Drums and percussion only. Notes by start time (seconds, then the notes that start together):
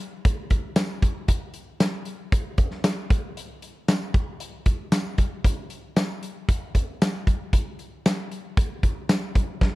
0.00 closed hi-hat
0.25 kick, closed hi-hat
0.50 kick, closed hi-hat
0.76 snare, closed hi-hat, tambourine
1.02 kick, closed hi-hat
1.28 kick, closed hi-hat
1.54 closed hi-hat
1.80 snare, closed hi-hat, tambourine
2.05 closed hi-hat
2.32 kick, closed hi-hat
2.58 kick, closed hi-hat
2.71 snare
2.84 snare, closed hi-hat, tambourine
3.10 kick, closed hi-hat
3.37 closed hi-hat
3.62 closed hi-hat
3.88 snare, closed hi-hat, tambourine
4.14 kick, closed hi-hat
4.40 closed hi-hat
4.66 kick, closed hi-hat
4.92 snare, closed hi-hat, tambourine
5.18 kick, closed hi-hat
5.44 kick, closed hi-hat
5.70 closed hi-hat
5.96 snare, closed hi-hat, tambourine
6.23 closed hi-hat
6.49 kick, closed hi-hat
6.75 kick, closed hi-hat
7.02 snare, closed hi-hat, tambourine
7.27 kick, closed hi-hat
7.53 kick, closed hi-hat
7.79 closed hi-hat
8.06 snare, closed hi-hat, tambourine
8.32 closed hi-hat
8.57 kick, closed hi-hat
8.83 kick, closed hi-hat
9.09 snare, closed hi-hat, tambourine
9.35 kick, closed hi-hat
9.61 kick, snare